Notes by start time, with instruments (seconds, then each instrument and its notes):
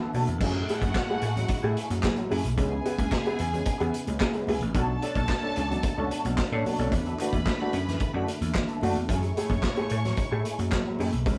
Already playing: tonewheel organ D3 A3 E4
0.01 grand piano E3 B3, clean electric guitar B3 D4 A4
0.13 slap bass B2, clean electric guitar B3 D4 A4, grand piano F#4 A4, open hi-hat, muted conga, high conga
0.27 slap bass E2, muted clean electric guitar stroke, closed hi-hat
0.40 slap bass F#2, tonewheel organ A2 G#3 E4, grand piano F#3, clean electric guitar A3 E4 G#4, string section F#4 F#5, kick, crash, muted conga, low conga
0.56 grand piano E4 G#4
0.68 grand piano A3 E4 G#4, muted clean electric guitar stroke, closed hi-hat, muted conga
0.81 slap bass F#2, clean electric guitar A3 E4 G#4, kick, closed hi-hat, high conga
0.94 kick, snare, clap, muted conga
1.09 grand piano A3 E4 G#4, muted clean electric guitar stroke
1.21 slap bass A2, clean electric guitar A3 E4 G#4, closed hi-hat, muted conga
1.36 grand piano F#3, muted clean electric guitar stroke, closed hi-hat, low conga
1.48 muted clean electric guitar stroke, kick, closed hi-hat
1.63 slap bass A2, grand piano A3 E4 G#4, clean electric guitar A3 E4 G#4
1.77 clean electric guitar A3 E4 G#4, closed hi-hat, muted conga
1.90 slap bass F#2, grand piano F#3, muted clean electric guitar stroke, closed hi-hat, high conga
2.03 slap bass F#3, grand piano E4 G#4, muted clean electric guitar stroke, kick, snare, clap, high conga
2.16 grand piano F#3, muted clean electric guitar stroke, closed hi-hat
2.30 slap bass F#2, clean electric guitar A3 E4 G#4, grand piano E4 G#4, open hi-hat, high conga
2.44 slap bass B1, muted clean electric guitar stroke, closed hi-hat
2.57 slap bass C#2, tonewheel organ C#3 B3 E4, grand piano C#3 G#3, string section G#4 G#5, muted clean electric guitar stroke, kick, closed hi-hat, low conga
2.70 clean electric guitar B3 E4 G#4, grand piano E4 G#4
2.84 clean electric guitar B3 E4 B4, grand piano B3 E4 G#4, closed hi-hat
2.97 slap bass C#2, muted clean electric guitar stroke, kick, closed hi-hat, high conga
3.11 muted clean electric guitar stroke, kick, snare, clap, muted conga
3.25 grand piano B3 E4 G#4, clean electric guitar B3 E4 G#4, closed hi-hat
3.38 slap bass E2, muted clean electric guitar stroke, closed hi-hat, muted conga
3.52 grand piano C#3 G#3, muted clean electric guitar stroke, closed hi-hat, low conga
3.65 muted clean electric guitar stroke, kick, closed hi-hat, muted conga
3.78 slap bass E2, clean electric guitar B3 E4 G#4, grand piano B3 E4 G#4, closed hi-hat
3.93 muted clean electric guitar stroke, closed hi-hat
4.06 slap bass C#2, grand piano C#3 G#3, muted clean electric guitar stroke, closed hi-hat, high conga
4.20 slap bass C#3, grand piano E4 G#4, muted clean electric guitar stroke, kick, snare, clap, high conga
4.33 grand piano C#3 G#3, clean electric guitar B3 E4 G#4, closed hi-hat
4.47 slap bass C#2, clean electric guitar B3 E4 G#4, grand piano E4 G#4, open hi-hat, high conga
4.61 slap bass A1, muted clean electric guitar stroke, closed hi-hat
4.74 slap bass B1, tonewheel organ B2 A3 D4, grand piano B2 F#3, clean electric guitar D4 F#4 A4, string section A4 A5, kick, closed hi-hat, muted conga, low conga
4.90 grand piano D4 A4
5.02 grand piano C#4 D4 A4, muted clean electric guitar stroke, closed hi-hat
5.15 slap bass B1, clean electric guitar D4 F#4 A4, kick, closed hi-hat, high conga
5.29 kick, snare, clap
5.43 grand piano C#4 D4 A4
5.56 slap bass C#2, clean electric guitar D4 F#4 A4, closed hi-hat, muted conga
5.70 grand piano B2 F#3, muted clean electric guitar stroke, closed hi-hat, low conga
5.83 muted clean electric guitar stroke, kick, closed hi-hat, muted conga
5.98 slap bass C#2, grand piano C#4 D4 A4, clean electric guitar D4 F#4 A4
6.11 clean electric guitar D4 F#4 A4, closed hi-hat, muted conga
6.24 slap bass B1, grand piano B2 F#3, muted clean electric guitar stroke, closed hi-hat, high conga
6.37 muted clean electric guitar stroke, kick, snare, clap, muted conga, high conga
6.52 slap bass A2, grand piano C#4 D4 A4, muted clean electric guitar stroke
6.65 grand piano B2 F#3, clean electric guitar D4 F#4 A4, open hi-hat, high conga
6.78 slap bass B1, grand piano C#4 D4 A4, muted clean electric guitar stroke, closed hi-hat
6.91 slap bass E2, tonewheel organ D3 E4, grand piano E3, string section B4 B5, muted clean electric guitar stroke, kick, closed hi-hat, muted conga, low conga
7.05 clean electric guitar D4 E4 A4, grand piano D4 F#4, closed hi-hat
7.19 grand piano A3 D4 F#4, clean electric guitar D4 E4 B4, clap, closed hi-hat, muted conga
7.32 slap bass E2, muted clean electric guitar stroke, kick, closed hi-hat, high conga
7.45 muted clean electric guitar stroke, kick, snare, clap, high conga
7.59 grand piano A3 D4 F#4, clean electric guitar D4 E4 A4
7.73 slap bass F#2, muted clean electric guitar stroke, closed hi-hat
7.86 grand piano E3, muted clean electric guitar stroke, snare, closed hi-hat, low conga
7.99 muted clean electric guitar stroke, kick, closed hi-hat
8.14 slap bass F#2, grand piano A3 D4 F#4, clean electric guitar D4 E4 A4
8.28 muted clean electric guitar stroke, closed hi-hat, muted conga
8.41 slap bass E2, grand piano E3, muted clean electric guitar stroke, closed hi-hat, high conga
8.54 slap bass E3, muted clean electric guitar stroke, kick, snare, clap, muted conga, high conga
8.68 clean electric guitar D4 E4 A4, closed hi-hat
8.81 slap bass F#2, grand piano A3 D4 F#4, clean electric guitar D4 E4 A4, open hi-hat, muted conga, high conga
8.95 slap bass E2, muted clean electric guitar stroke, closed hi-hat
9.08 slap bass F#2, tonewheel organ A2 G#3, grand piano F#3, clean electric guitar A3 E4 G#4, string section C#5 C#6, kick, closed hi-hat, muted conga, low conga
9.22 grand piano E4 G#4, closed hi-hat
9.36 grand piano A3 E4 G#4, muted clean electric guitar stroke, closed hi-hat, muted conga
9.49 slap bass F#2, clean electric guitar A3 E4 G#4, kick, closed hi-hat, high conga
9.63 kick, snare, clap, muted conga
9.76 grand piano A3 E4 G#4, closed hi-hat
9.89 slap bass A2, clean electric guitar A3 E4 G#4, closed hi-hat
10.04 grand piano F#3, muted clean electric guitar stroke, snare, closed hi-hat, low conga
10.17 muted clean electric guitar stroke, kick, closed hi-hat
10.31 slap bass A2, grand piano A3 E4 G#4, clean electric guitar A3 E4 G#4
10.45 clean electric guitar A3 E4 G#4, closed hi-hat, muted conga
10.59 slap bass F#2, grand piano F#3, muted clean electric guitar stroke, closed hi-hat, high conga
10.71 slap bass F#3, grand piano E4 G#4, muted clean electric guitar stroke, kick, snare, clap, muted conga, high conga
10.86 grand piano F#3, muted clean electric guitar stroke
10.99 slap bass F#2, grand piano A3 E4 G#4, clean electric guitar A3 E4 G#4, open hi-hat, muted conga, high conga
11.12 slap bass B1, muted clean electric guitar stroke, closed hi-hat
11.26 slap bass C#2, tonewheel organ C#3 B3, grand piano C#3 G#3, string section B4 B5, muted clean electric guitar stroke, kick, closed hi-hat, low conga